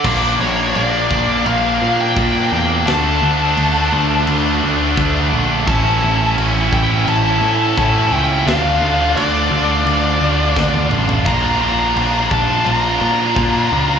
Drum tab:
CC |x---x---x---x---|x---x---x---x---|x---x---x---x---|x---x---x-------|
SD |----------------|o---------------|----------------|o-----------o---|
T1 |----------------|----------------|----------------|-------------o--|
T2 |----------------|----------------|----------------|--------------o-|
FT |----------------|----------------|----------------|---------------o|
BD |o-----o-----o---|------------o---|o-----o-----o---|------------o---|

CC |x---x---x---x---|
SD |----------------|
T1 |----------------|
T2 |----------------|
FT |----------------|
BD |o-----o-----o---|